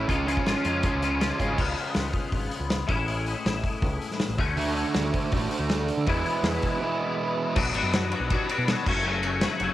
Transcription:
0.07 C#2 C#3 F3 G#3 C#4 F4, kick, closed hi-hat
0.27 C#3 F3 G#3 C#4 F4, closed hi-hat
0.37 kick
0.46 G#1 C#3 F3 G#3 C#4 F4, snare, closed hi-hat
0.64 F2 C#3 F3 G#3 C#4 F4, closed hi-hat
0.83 C#3 F3 G#3 C#4 F4, kick, closed hi-hat
0.94 C#2
1.02 C#3 F3 G#3 C#4 F4, closed hi-hat
1.20 C#3 F3 G#3 C#4 F4, snare, closed hi-hat
1.40 G#1 C#3 F3 G#3 C#4 F4, kick, closed hi-hat
1.58 C#2 C#3 F3 G#3 B3 F4, kick, crash
1.77 open hi-hat
1.95 C#2, snare, open hi-hat
2.13 kick, open hi-hat
2.32 G#1, kick, open hi-hat
2.51 open hi-hat
2.60 C#2
2.70 snare, open hi-hat
2.87 A1 A2 E3 G#3 C#4 E4, kick, open hi-hat
3.08 open hi-hat
3.26 open hi-hat
3.45 A1, snare, open hi-hat
3.64 kick, open hi-hat
3.82 C#2, kick, open hi-hat
4.02 open hi-hat
4.11 snare
4.20 snare, open hi-hat
4.29 A1
4.38 D2 D3 A3 C#4 F#4, kick, open hi-hat
4.57 D3 A3 F#4, open hi-hat
4.76 open hi-hat
4.94 D2, snare, open hi-hat
5.14 kick, open hi-hat
5.32 A1 D3 A3 F#4, kick, open hi-hat
5.51 open hi-hat
5.59 D2
5.70 snare, open hi-hat
5.88 open hi-hat
5.97 D3
6.07 E2 B2 E3 G#3 B3 E4, kick, open hi-hat
6.26 open hi-hat
6.43 E2, snare, open hi-hat
6.62 kick, open hi-hat
6.81 E3 G#3 B3 E4
7.56 B1 B2 F#3 B3 D4 F#4, kick, crash
7.74 G#1 B2 F#3 B3 D4 F#4, ride
7.83 F#2
7.93 B2 F#3 B3 D4 F#4, snare, ride
8.12 B2 F#3 B3 D4 F#4, ride
8.20 B1
8.30 B2 F#3 B3 D4 F#4, kick, ride
8.49 B2 F#3 B3 D4 F#4, ride
8.58 B2
8.67 B2 F#3 B3 D4 F#4, snare, ride
8.86 F#1 F#2 C#3 F#3 A3 C#4 F#4, kick, crash
9.05 F#2 C#3 F#3 A3 C#4 F#4
9.23 F#2 C#3 F#3 A3 C#4 F#4, ride
9.41 F#2 C#3 F#3 A3 C#4 F#4, snare, ride
9.60 F#1 F#2 C#3 F#3 A3 C#4 F#4, ride

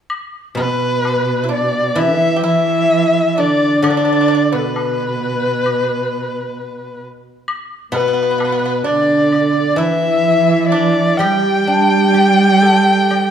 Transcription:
0.10 high woodblock
0.55 B2 B3 B4
1.05 high woodblock, low woodblock
1.44 E4
1.49 D4 D5
1.95 E3 E4 E5, high woodblock
2.36 G4
2.43 E3 E4 E5
3.35 D3 D4 D5
3.40 D5
3.82 D3 D4 D5, high woodblock
3.90 D4
3.97 D4
4.05 D4
4.13 D4
4.21 D4
4.28 D4
4.35 D4
4.52 B2 B3 B4
4.59 A4
4.65 B4
4.76 high woodblock, low woodblock
5.66 high woodblock
7.48 high woodblock
7.92 B2 B3 B4
8.00 B3
8.08 B3
8.13 B3
8.23 B3
8.31 B3
8.38 B3, high woodblock, low woodblock
8.45 B3
8.52 B3
8.59 B3
8.65 B3
8.83 D3 D4 D5
9.32 high woodblock
9.57 D5
9.76 E3 E4 E5
10.69 D4 D5
11.17 G3 G4 G5, high woodblock
11.22 G3
11.67 D4
12.14 G4
12.62 A4
13.11 D5, high woodblock

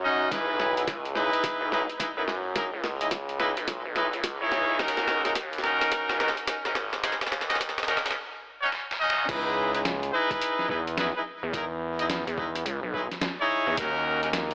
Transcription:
Already playing: F#2
0.03 C#4 D#4 F#4 D#5
0.31 C#2 D#4 E4 G#4 B4, kick, snare, closed hi-hat
0.49 B1
0.60 snare
0.77 D#4 E4 G#4 B4, closed hi-hat
0.87 C#2, kick, snare, closed hi-hat
1.05 closed hi-hat
1.15 D#4 E4 G#4 B4, snare
1.33 closed hi-hat
1.44 kick, snare, closed hi-hat
1.61 B1
1.71 D#4 E4 G#4 B4, snare
1.90 closed hi-hat
1.99 D#4 E4 G#4 B4, kick, snare, closed hi-hat
2.17 F#2 D#4 E4 G#4 B4
2.28 snare
2.55 D#4 E4 G#4 A#4, kick, snare, closed hi-hat
2.74 C#2
2.84 snare
3.01 D#4 E4 G#4 D#5, closed hi-hat
3.11 kick, snare, closed hi-hat
3.29 closed hi-hat
3.40 D#4 E4 G#4 B4, snare
3.57 B1, closed hi-hat
3.68 kick, snare, closed hi-hat
3.85 B1
3.96 D#4 E4 G#4 B4, snare
4.13 C#2, closed hi-hat
4.24 kick, snare, closed hi-hat
4.41 C#2 D#4 E4 G#4 C#5
4.52 C#2, snare
4.69 C#2
4.79 D#2 C#4 D#4 F#4 A#4, kick, snare
4.88 closed hi-hat
4.97 C#2, snare
5.08 snare
5.25 C#4 D#4 F#4 A#4, snare, closed hi-hat
5.35 D#2, kick, snare, closed hi-hat
5.53 closed hi-hat
5.58 snare
5.63 C#4 D#4 F#4 A#4, snare
5.81 snare, closed hi-hat
5.92 kick, snare, closed hi-hat
6.09 C#2, snare
6.20 C#4 D#4 F#4 A#4, snare
6.28 snare
6.37 closed hi-hat
6.47 C#4 D#4 F#4 A#4, kick, snare, closed hi-hat
6.65 G#1 C#4 D#4 F#4 A#4, snare
6.75 snare
6.93 snare
7.04 C#4 D#4 F#4 G#4, kick, snare, closed hi-hat
7.12 snare
7.21 D#2, snare, closed hi-hat
7.27 snare
7.32 snare
7.41 snare
7.49 C#4 D#4 F#4 D#5, snare, closed hi-hat
7.55 snare
7.60 kick, snare, closed hi-hat
7.69 snare
7.78 snare, closed hi-hat
7.83 snare
7.88 C#4 D#4 F#4 A#4, snare
7.97 snare
8.06 C#2, snare, closed hi-hat
8.11 snare
8.62 C#4 D#4 F#4 C#5
8.72 snare
8.91 snare
9.01 C#4 D#4 F#4 D#5
9.10 snare
9.29 C#2 D#4 E4 G#4 B4, kick, closed hi-hat, crash
9.74 D#4 E4 G#4 B4, closed hi-hat
9.85 snare, closed hi-hat
10.03 closed hi-hat
10.13 D#4 E4 G#4 B4
10.31 kick, cross-stick, closed hi-hat
10.41 closed hi-hat
10.59 snare
10.69 E2 D#4 E4 G#4 B4, kick
10.87 closed hi-hat
10.98 D#4 E4 G#4 B4, snare, closed hi-hat
11.16 D#4 E4 G#4 B4
11.43 E2
11.53 D#4 E4 G#4 A#4, kick, closed hi-hat
11.99 D#4 E4 G#4 D#5, closed hi-hat
12.10 snare, closed hi-hat
12.27 E2, closed hi-hat
12.37 D#4 E4 G#4 B4, kick
12.55 cross-stick, closed hi-hat
12.66 C#2, closed hi-hat
12.83 B1
12.94 D#4 E4 G#4 B4, kick
13.11 snare, closed hi-hat
13.21 snare, closed hi-hat
13.40 D#4 E4 G#4 C#5
13.67 E2
13.77 D#2 C#4 D#4 F#4 A#4, kick, closed hi-hat
14.23 C#4 D#4 F#4 A#4, closed hi-hat
14.33 snare, closed hi-hat
14.51 closed hi-hat

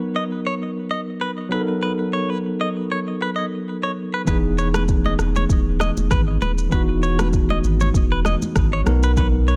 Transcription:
Already playing: F#3 B3 D#4 A#4
0.16 D#5
0.47 C#5
0.91 D#5
1.21 B4
1.49 F#3 B3 D#4 B4
1.54 A4
1.61 A#4
1.83 B4
2.13 C#5
2.30 B4
2.61 D#5
2.92 C#5
3.22 B4
3.36 D#5
3.83 C#5
4.14 B4
4.25 E1 E3 B3 D#4 B4, kick, low conga, shaker
4.30 G#4
4.58 C#5, shaker
4.74 B4, cross-stick, high conga, shaker
4.88 kick, shaker
5.06 D#5, high conga
5.19 E1, cross-stick, low conga, shaker
5.36 C#5, high conga, shaker
5.49 D#1, kick, shaker
5.80 D#5, cross-stick, high conga, shaker
5.97 E1, high conga, shaker
6.11 G#1 B4, kick, cross-stick, low conga, shaker
6.42 D#1 B4, high conga, shaker
6.58 shaker
6.70 E1 E3 B3 D#4 B4, kick, low conga, shaker
6.75 F#4
7.03 C#5, shaker
7.19 B4, cross-stick, high conga, shaker
7.33 kick, shaker
7.50 D#5, high conga
7.64 G#1, low conga, shaker
7.80 C#5, high conga, shaker
7.94 E1, kick, shaker
8.12 B4
8.25 D#5, cross-stick, high conga, shaker
8.42 high conga, shaker
8.56 G#1, kick, cross-stick, low conga, shaker
8.73 C#5
8.84 B1 F#3 B3 D#4, cross-stick, high conga, shaker
8.89 A#4
9.03 B4, shaker
9.17 B4, kick, low conga, shaker
9.48 C#5, shaker

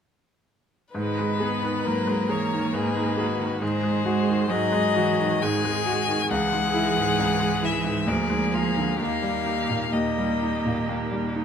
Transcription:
0.94 G#2 D#3 G#3 B4
1.19 G#3
1.40 B3 G#4
1.62 D#3
1.85 G#2 F#3 A#3 A#4
2.07 G#3
2.29 E3 G#4 C#5
2.53 D#3
2.73 G#2 D#3 G#4 B4
2.97 G#3
3.17 F#4 G#4
3.39 D#3
3.62 G#2 D#3 G#3 G#4 C5
3.83 G#3
4.03 G#3 F#4
4.28 D#3
4.49 G#2 F#3 G#4 D#5
4.72 G#3
4.95 E3 F#4
5.20 D#3
5.41 G#2 D#3 G#3 G#4 G#5
5.65 G#3
5.86 F#4
6.08 D#3
6.29 C#2 E3 G#3 G#4 F#5
6.52 G#3
6.74 E4
6.96 G#2
7.19 C#2
7.40 G#3
7.62 E4 E5
7.84 G#2
8.07 D2 F3 A#3 G#4 D5
8.30 G#3
8.54 F4 F5
8.77 D3
8.97 D#2 A#3 G4 F5
9.02 D#3
9.22 G3
9.46 D#4
9.70 A#2
9.92 D#2 D#3 A#3 G4 D#5
10.18 G3
10.42 D#4
10.66 A#2
10.89 D#2
11.11 G3
11.36 D#4

